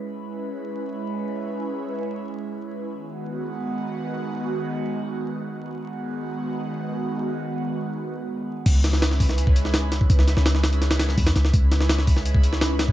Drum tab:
CC |----------------|----------------|----------------|----------------|
HH |----------------|----------------|----------------|----------------|
SD |----------------|----------------|----------------|----------------|
BD |----------------|----------------|----------------|----------------|

CC |----------------|----------------|x---------------|----------------|
HH |----------------|----------------|x-x-x-o-x-x-x-x-|x-x-x-xxxxx-oxx-|
SD |----------------|----------------|--oooo-o---oo-o-|-oooooo-oooo-ooo|
BD |----------------|----------------|o-----o--o-----o|o-----------o---|

CC |----------------|
HH |x-x-x-o-x-x-x-x-|
SD |--oooo-o---oo-o-|
BD |o-----o--o-----o|